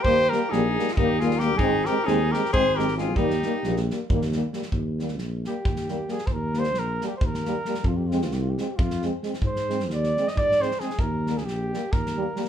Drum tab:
SD |--o-o-oo--ooo-|--o-o-oo--ooo-|-oo-ooo--oo-oo|--ooo-o--oo-oo|
BD |o-------o-----|o-------o-----|o-------o-----|o-------o-----|

SD |--ooo-o--oo-oo|--ooo-o--oo-oo|-ooooooo-ooooo|--ooo-o--o--oo|
BD |o-------o-----|o-------o-----|o-------o-----|o-------o-----|